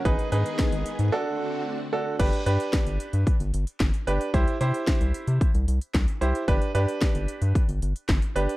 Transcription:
0.05 analog synth bass G#1, string machine D#3 G#3 B3 G#4, grand piano D#4 G#4 B4, kick, closed hi-hat
0.19 closed hi-hat
0.32 analog synth bass G#2, grand piano D#4 G#4 B4, closed hi-hat
0.46 closed hi-hat
0.59 kick, snare, closed hi-hat
0.72 analog synth bass G#1, closed hi-hat
0.86 closed hi-hat
0.99 analog synth bass G#2, closed hi-hat
1.12 string machine D3 A3 C4 F#4, grand piano D4 F#4 A4
1.93 grand piano D4 F#4 A4
2.19 analog synth bass G1, grand piano D4 G4 B4, kick, closed hi-hat, crash
2.33 closed hi-hat
2.46 analog synth bass G2, grand piano D4 G4 B4, closed hi-hat
2.60 closed hi-hat
2.73 kick, snare, closed hi-hat
2.86 analog synth bass G1, closed hi-hat
3.00 closed hi-hat
3.13 analog synth bass G2, closed hi-hat
3.27 kick, closed hi-hat
3.40 analog synth bass G1, closed hi-hat
3.54 analog synth bass G1, closed hi-hat
3.67 closed hi-hat
3.80 analog synth bass G1, kick, snare, clap, closed hi-hat
3.94 closed hi-hat
4.07 analog synth bass G1, grand piano D4 G4 B4, closed hi-hat
4.21 closed hi-hat
4.34 analog synth bass C2, grand piano E4 G4 C5, kick, closed hi-hat
4.47 closed hi-hat
4.61 analog synth bass C3, grand piano E4 G4 C5, closed hi-hat
4.74 closed hi-hat
4.87 kick, snare, closed hi-hat
5.01 analog synth bass C2, closed hi-hat
5.14 closed hi-hat
5.27 analog synth bass C3, closed hi-hat
5.41 kick, closed hi-hat
5.54 analog synth bass C2, closed hi-hat
5.68 analog synth bass C2, closed hi-hat
5.81 closed hi-hat
5.94 analog synth bass C2, kick, snare, clap, closed hi-hat
6.08 closed hi-hat
6.21 analog synth bass C2, grand piano E4 G4 C5, closed hi-hat
6.35 closed hi-hat
6.48 analog synth bass G1, grand piano D4 G4 B4, kick, closed hi-hat
6.62 closed hi-hat
6.75 analog synth bass G2, grand piano D4 G4 B4, closed hi-hat
6.88 closed hi-hat
7.01 kick, snare, closed hi-hat
7.15 analog synth bass G1, closed hi-hat
7.28 closed hi-hat
7.42 analog synth bass G2, closed hi-hat
7.55 kick, closed hi-hat
7.69 analog synth bass G1, closed hi-hat
7.82 analog synth bass G1, closed hi-hat
7.96 closed hi-hat
8.09 analog synth bass G1, kick, snare, clap, closed hi-hat
8.22 closed hi-hat
8.36 analog synth bass G1, grand piano D4 G4 B4, closed hi-hat
8.49 closed hi-hat

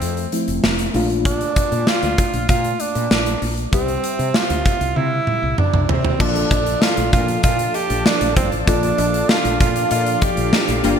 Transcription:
Already playing: fm electric piano F3 A3 C4 E5, tenor saxophone C4
0.01 fretless electric bass F2, closed hi-hat
0.17 closed hi-hat
0.32 fm electric piano F3 A3 C4 E4, closed hi-hat
0.48 fretless electric bass F1, closed hi-hat
0.63 fretless electric bass F1, snare
0.79 closed hi-hat
0.93 fretless electric bass A#1, fm electric piano A3 A#3 D4 F4, open hi-hat
1.10 closed hi-hat
1.25 tenor saxophone D4, kick, closed hi-hat
1.41 closed hi-hat
1.56 kick, closed hi-hat
1.72 fretless electric bass A#2, closed hi-hat
1.87 tenor saxophone F4, snare
2.03 fretless electric bass D2, closed hi-hat
2.18 kick, closed hi-hat
2.33 fretless electric bass A#1, closed hi-hat
2.49 fretless electric bass A#2, tenor saxophone F4, kick, closed hi-hat
2.64 closed hi-hat
2.80 tenor saxophone D4, closed hi-hat
2.95 fretless electric bass A#2, closed hi-hat
3.11 fretless electric bass A#1, snare
3.26 closed hi-hat
3.42 fretless electric bass A#1, open hi-hat
3.57 closed hi-hat
3.72 fretless electric bass C2, fm electric piano G3 C4 G4 E5, tenor saxophone C4, kick, closed hi-hat
3.88 closed hi-hat
4.04 closed hi-hat
4.19 fretless electric bass C3, closed hi-hat
4.34 tenor saxophone F4, snare
4.50 fretless electric bass D2, closed hi-hat
4.65 kick, closed hi-hat
4.81 fretless electric bass C2, closed hi-hat
4.96 fretless electric bass C3, tenor saxophone E4, high tom
5.27 mid tom
5.43 fretless electric bass C2
5.58 tenor saxophone D4, muted fretless electric bass stroke, mid tom
5.74 fretless electric bass C2, mid tom
5.83 tenor saxophone D4
5.89 fretless electric bass C3, tenor saxophone C4, floor tom
6.05 floor tom
6.19 fretless electric bass A#1, analog polysynth F3 D4 A4, fm electric piano A#3 D4 F4 A4, tenor saxophone D4, string machine D5 F5 A5, kick, crash, cowbell
6.35 closed hi-hat
6.51 fretless electric bass A#1, kick, closed hi-hat, cowbell
6.66 closed hi-hat
6.82 tenor saxophone F4, snare, cowbell
6.97 fretless electric bass A#1, closed hi-hat
7.13 fretless electric bass A#2, tenor saxophone F4, kick, closed hi-hat
7.28 closed hi-hat
7.43 fretless electric bass A#2, tenor saxophone F4, kick, closed hi-hat, cowbell
7.59 closed hi-hat
7.74 tenor saxophone G4, closed hi-hat, cowbell
7.90 fretless electric bass A#1, closed hi-hat
8.05 tenor saxophone D4, snare, cowbell
8.21 fretless electric bass A#1, closed hi-hat
8.36 fretless electric bass G1, tenor saxophone C4, kick, closed hi-hat
8.52 fretless electric bass A1, closed hi-hat
8.66 fretless electric bass A#1, fm electric piano A#3 D4 F4 A4, tenor saxophone D4, kick, closed hi-hat, cowbell
8.83 closed hi-hat
8.98 fretless electric bass A#1, closed hi-hat, cowbell
9.14 closed hi-hat
9.29 tenor saxophone F4, snare, cowbell
9.45 fretless electric bass A#1, closed hi-hat
9.60 fretless electric bass A#2, tenor saxophone F4, kick, closed hi-hat
9.76 closed hi-hat
9.91 fretless electric bass A#2, tenor saxophone F4, closed hi-hat, cowbell
10.06 closed hi-hat
10.22 tenor saxophone G4, kick, closed hi-hat, cowbell
10.37 fretless electric bass A#1, closed hi-hat
10.53 snare, cowbell
10.68 fretless electric bass A#1, closed hi-hat
10.83 fretless electric bass G1, analog polysynth G3 A#3 F4, fm electric piano A#3 D4 F4 G4, string machine G4, closed hi-hat

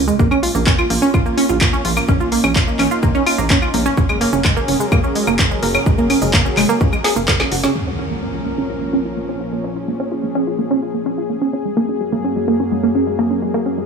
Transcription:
Already playing: analog synth bass C#2
0.08 synth arpeggio sound G#3, shaker
0.19 analog synth bass A#1, synth arpeggio sound A#3, analog synth pad A#3 C#4 F4, kick, shaker
0.31 synth arpeggio sound C#4, claves, shaker
0.43 synth arpeggio sound F4, open hi-hat
0.55 analog synth bass A#1, synth arpeggio sound A#3, shaker
0.67 synth arpeggio sound C#4, kick, clap, shaker
0.78 synth arpeggio sound F4, claves, shaker
0.90 analog synth bass A#1, synth arpeggio sound A#3, open hi-hat
1.02 synth arpeggio sound C#4, shaker
1.14 analog synth bass F1, synth arpeggio sound F4, kick, claves, shaker
1.26 synth arpeggio sound A#3, shaker
1.37 synth arpeggio sound C#4, open hi-hat
1.49 analog synth bass A#1, synth arpeggio sound F4, shaker
1.61 synth arpeggio sound A#3, kick, clap, claves, shaker
1.73 synth arpeggio sound C#4, shaker
1.85 analog synth bass A#1, synth arpeggio sound F4, open hi-hat
1.97 synth arpeggio sound A#3, claves, shaker
2.08 analog synth bass A#1, synth arpeggio sound C#4, analog synth pad D#4, kick, shaker
2.20 synth arpeggio sound F4, shaker
2.32 synth arpeggio sound A#3, open hi-hat
2.44 analog synth bass A#1, synth arpeggio sound C#4, claves, shaker
2.56 synth arpeggio sound F4, kick, clap, shaker
2.67 synth arpeggio sound A#3, shaker
2.79 analog synth bass A#1, synth arpeggio sound C#4, clap, open hi-hat, claves
2.91 synth arpeggio sound F4, shaker
3.03 analog synth bass F1, synth arpeggio sound A#3, kick, shaker
3.15 synth arpeggio sound C#4, shaker
3.26 synth arpeggio sound F4, open hi-hat, claves
3.38 analog synth bass A#1, synth arpeggio sound A#3, shaker
3.50 synth arpeggio sound C#4, kick, clap, shaker
3.62 synth arpeggio sound F4, claves, shaker
3.74 analog synth bass A#1, synth arpeggio sound A#3, open hi-hat
3.86 synth arpeggio sound C#4, shaker
3.97 analog synth bass F#1, analog synth pad F#3 G#4 A#4, synth arpeggio sound C#4, kick, shaker
4.09 synth arpeggio sound G#3, claves, shaker
4.21 synth arpeggio sound A#3, open hi-hat
4.33 analog synth bass F#1, synth arpeggio sound C#4, shaker
4.45 synth arpeggio sound G#3, kick, clap, claves, shaker
4.56 synth arpeggio sound A#3, shaker
4.68 analog synth bass F#1, synth arpeggio sound C#4, open hi-hat
4.80 synth arpeggio sound G#3, shaker
4.92 analog synth bass C#2, synth arpeggio sound A#3, kick, claves, shaker
5.04 synth arpeggio sound C#4, shaker
5.15 synth arpeggio sound G#3, open hi-hat
5.27 analog synth bass F#1, synth arpeggio sound A#3, claves, shaker
5.39 synth arpeggio sound C#4, kick, clap, shaker
5.51 synth arpeggio sound G#3, shaker
5.63 analog synth bass F#1, synth arpeggio sound A#3, open hi-hat
5.75 synth arpeggio sound C#4, claves, shaker
5.86 analog synth bass F#1, synth arpeggio sound G#3, kick, shaker
5.98 synth arpeggio sound A#3, shaker
6.10 synth arpeggio sound C#4, open hi-hat, claves
6.22 analog synth bass F#1, synth arpeggio sound G#3, open hi-hat, shaker
6.33 synth arpeggio sound A#3, kick, clap, shaker
6.45 synth arpeggio sound C#4, shaker
6.57 analog synth bass F#1, synth arpeggio sound G#3, clap, open hi-hat, claves
6.69 synth arpeggio sound A#3, shaker
6.81 analog synth bass C#2, synth arpeggio sound C#4, kick, shaker
6.93 synth arpeggio sound G#3, claves, shaker
7.04 synth arpeggio sound G#4, snare, open hi-hat
7.16 analog synth bass F#1, synth arpeggio sound A#3, shaker
7.28 synth arpeggio sound A#4, kick, snare, clap, shaker
7.40 synth arpeggio sound C#4, snare, claves, shaker
7.52 analog synth bass F#1, synth arpeggio sound F#4, open hi-hat
7.64 synth arpeggio sound C#4, snare, shaker
7.75 analog synth pad A#2 F3 C#4 A#4, synth arpeggio sound A#3, impact
7.87 synth arpeggio sound C#4
7.99 synth arpeggio sound F4
8.11 synth arpeggio sound A#3
8.23 synth arpeggio sound C#4
8.35 synth arpeggio sound F4
8.46 synth arpeggio sound A#3
8.58 synth arpeggio sound C#4
8.70 synth arpeggio sound F4
8.82 synth arpeggio sound A#3
8.93 synth arpeggio sound C#4
9.05 synth arpeggio sound F4
9.17 synth arpeggio sound A#3
9.29 synth arpeggio sound C#4
9.41 synth arpeggio sound F4
9.53 synth arpeggio sound A#3
9.64 synth arpeggio sound C#4, analog synth pad G#4
9.76 synth arpeggio sound F4
9.88 synth arpeggio sound A#3
10.00 synth arpeggio sound C#4
10.12 synth arpeggio sound F4
10.24 synth arpeggio sound A#3
10.35 synth arpeggio sound C#4
10.47 synth arpeggio sound F4
10.59 synth arpeggio sound A#3
10.71 synth arpeggio sound C#4
10.83 synth arpeggio sound F4
10.94 synth arpeggio sound A#3
11.06 synth arpeggio sound C#4
11.18 synth arpeggio sound F4
11.30 synth arpeggio sound A#3
11.41 synth arpeggio sound C#4
11.53 analog synth pad F#2 F#3 A#3, synth arpeggio sound C#4
11.65 synth arpeggio sound G#3
11.77 synth arpeggio sound A#3
11.89 synth arpeggio sound C#4
12.01 synth arpeggio sound G#3
12.12 synth arpeggio sound A#3
12.24 synth arpeggio sound C#4
12.36 synth arpeggio sound G#3
12.48 synth arpeggio sound A#3
12.60 synth arpeggio sound C#4
12.72 synth arpeggio sound G#3
12.83 synth arpeggio sound A#3
12.95 synth arpeggio sound C#4
13.07 synth arpeggio sound G#3
13.19 synth arpeggio sound A#3
13.31 synth arpeggio sound C#4
13.42 synth arpeggio sound G#3
13.54 synth arpeggio sound A#3
13.66 synth arpeggio sound C#4
13.78 synth arpeggio sound G#3

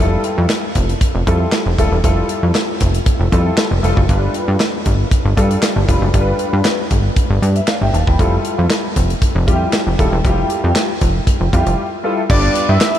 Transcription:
0.00 analog synth bass F1, grand piano G3 E4 F4 A4
0.24 closed hi-hat
0.38 analog synth bass F2
0.50 snare, clap, closed hi-hat
0.75 analog synth bass F1, kick, closed hi-hat
0.89 closed hi-hat
1.01 kick, closed hi-hat
1.15 analog synth bass F1
1.26 analog synth bass F2, grand piano G3 E4 F4 A4, kick, closed hi-hat
1.52 snare, clap, closed hi-hat
1.66 analog synth bass F1
1.78 analog synth bass D#1, grand piano G3 E4 F4 A4, kick, closed hi-hat
1.92 analog synth bass E1
2.03 analog synth bass F1, grand piano G3 E4 F4 A4, kick, closed hi-hat
2.29 closed hi-hat
2.43 analog synth bass F2
2.55 snare, clap, closed hi-hat
2.81 analog synth bass F1, kick, closed hi-hat
2.94 closed hi-hat
3.06 kick, closed hi-hat
3.20 analog synth bass F1
3.32 analog synth bass F2, grand piano G3 E4 F4 A4, kick, closed hi-hat
3.57 snare, clap, closed hi-hat
3.71 analog synth bass F1
3.83 analog synth bass F1, grand piano G3 E4 F4 A4, closed hi-hat
3.97 analog synth bass F#1, kick
4.09 analog synth bass G1, grand piano G3 D4 F4 B4, kick, closed hi-hat
4.34 closed hi-hat
4.48 analog synth bass G2
4.60 snare, clap, closed hi-hat
4.86 analog synth bass G1, kick, closed hi-hat
5.11 kick, closed hi-hat
5.25 analog synth bass G1
5.36 analog synth bass G2, grand piano G3 D4 F4 A4, kick, closed hi-hat
5.51 closed hi-hat
5.62 snare, clap, closed hi-hat
5.76 analog synth bass G1
5.88 analog synth bass F1, grand piano G3 D4 F4 B4, kick, closed hi-hat
6.02 analog synth bass F#1
6.14 analog synth bass G1, grand piano G3 D4 F4 A4, kick, closed hi-hat
6.21 grand piano B4
6.39 closed hi-hat
6.53 analog synth bass G2
6.65 snare, clap, closed hi-hat
6.91 analog synth bass G1, kick, closed hi-hat
7.16 kick, closed hi-hat
7.30 analog synth bass G1
7.42 analog synth bass G2, grand piano B4 D5, closed hi-hat
7.56 grand piano E5, closed hi-hat
7.67 grand piano D5 F5, snare, clap, closed hi-hat
7.81 analog synth bass G1, grand piano E5 G5
7.93 analog synth bass D#1, grand piano F5 A5, closed hi-hat
8.07 analog synth bass E1, grand piano G5 B5, kick
8.19 analog synth bass F1, grand piano G3 E4 F4 A4, kick, closed hi-hat
8.45 closed hi-hat
8.59 analog synth bass F2
8.70 snare, clap, closed hi-hat
8.96 analog synth bass F1, kick, closed hi-hat
9.10 closed hi-hat
9.22 kick, closed hi-hat
9.35 analog synth bass F1
9.47 analog synth bass F2, grand piano G3 E4 F4 G4, kick, closed hi-hat
9.73 snare, clap, closed hi-hat
9.87 analog synth bass F1
9.98 analog synth bass D#1, grand piano G3 E4 F4 A4, kick, closed hi-hat
10.12 analog synth bass E1
10.24 analog synth bass F1, grand piano G3 E4 F4 G4, kick, closed hi-hat
10.50 closed hi-hat
10.64 analog synth bass F2
10.76 snare, clap, closed hi-hat
11.01 analog synth bass F1, kick, closed hi-hat
11.27 kick, closed hi-hat
11.41 analog synth bass F1
11.53 analog synth bass F2, grand piano G3 E4 F4 G4, kick, closed hi-hat
11.67 analog synth bass F1, closed hi-hat
12.03 grand piano G3 E4 F4 A4
12.29 analog synth bass G1, grand piano G3 B3 D4 F4 B4, analog synth lead D5, kick, crash
12.55 closed hi-hat
12.69 analog synth bass G2, analog synth lead E5
12.81 snare, clap, closed hi-hat
12.95 closed hi-hat

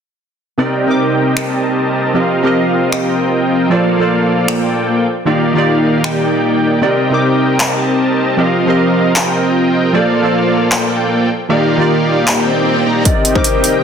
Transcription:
0.58 synth keys C3 C4 D#4 A#4 D5, supersaw synth C4 G4 A#4 D#5 G5
0.87 synth keys C3 C4 D#4 A#4
0.91 synth keys D6
1.37 supersaw synth C4 G4 A#4 A5, finger snap
2.14 synth keys F3 C4 G4 A#4 D#5, supersaw synth C4 F4 A#4 D#5 F5
2.43 synth keys F3 C4 G4 A#4 D#5
2.92 supersaw synth C4 F4 D#5 G5, finger snap
3.70 synth keys F3 F4 A4 C5 D5, supersaw synth A#3 F4 A4 D5 F5
3.98 synth keys F3 F4 A4 C5 D5
4.48 supersaw synth A#3 F4 A4 G5, finger snap
5.25 synth keys D#3 D#4 F4 G4 D5, supersaw synth A#3 D#4 G4 D5 F5
5.54 synth keys D#3 D#4 F4 G4
5.58 synth keys D5
6.04 finger snap
6.81 synth keys C3 C4 D#4 A#4 D5, supersaw synth C4 G4 A#4 D#5 G5
7.10 synth keys C3 C4 D#4 A#4 D6
7.60 finger snap, clap
8.37 synth keys F3 C4 G4 A#4 D#5, supersaw synth C4 F4 A#4 D#5 F5
8.66 synth keys F3 C4 G4 A#4
8.70 synth keys D#5
9.16 supersaw synth F4 A#4, finger snap, clap
9.93 synth keys F3 F4 A4 C5 D5, supersaw synth A#3 F4 A4 D5 F5
10.22 synth keys F3 F4 A4 C5
10.26 synth keys D5
10.72 supersaw synth A#3 F4 A4 D5 G5, finger snap, clap
11.49 synth keys D#3 D#4 F4 G4 D5, supersaw synth A#3 D#4 G4 D5 F5
11.78 synth keys D#3 D#4 F4 G4
11.82 synth keys D5
12.28 supersaw synth A#3 D#4 G4 D5 G5, finger snap, clap, swell
12.86 supersaw synth A#3 D#4 G4 D5 A#5
13.04 synth keys C3 C4 D#4 A#4 D5, ambient pad D#3 C4 G4 A#4, kalimba D#5, kick, closed hi-hat, riser
13.25 closed hi-hat
13.34 synth keys C3 C4 D#4 A#4 D6, kalimba C5, kick
13.44 closed hi-hat
13.64 closed hi-hat

